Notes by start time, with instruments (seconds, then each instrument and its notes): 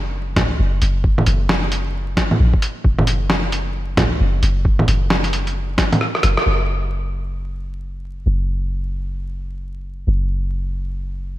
Already playing: 808-style bass F#1
0.36 808-style bass C#2, kick, snare, closed hi-hat, low bongo
0.59 808-style bass F#1
0.82 808-style bass F#1, closed hi-hat
1.04 kick
1.18 low bongo
1.26 808-style bass F#1, closed hi-hat
1.49 snare
1.72 closed hi-hat
2.17 kick, snare, closed hi-hat
2.31 low bongo
2.40 808-style bass A#1
2.54 kick
2.62 closed hi-hat
2.84 808-style bass F#1, kick
2.99 low bongo
3.07 closed hi-hat
3.30 snare
3.52 closed hi-hat
3.97 808-style bass C#2, kick, snare, closed hi-hat, low bongo
4.20 808-style bass F#1
4.43 808-style bass F#1, closed hi-hat
4.65 kick
4.79 low bongo
4.88 808-style bass F#1, closed hi-hat
5.10 snare
5.24 closed hi-hat
5.33 closed hi-hat
5.47 closed hi-hat
5.78 kick, snare, closed hi-hat
5.92 closed hi-hat, low bongo
6.01 cross-stick
6.15 cross-stick
6.23 808-style bass F#1, cross-stick, closed hi-hat
6.37 cross-stick
6.46 808-style bass F#1
8.26 808-style bass F#1
10.07 808-style bass F#1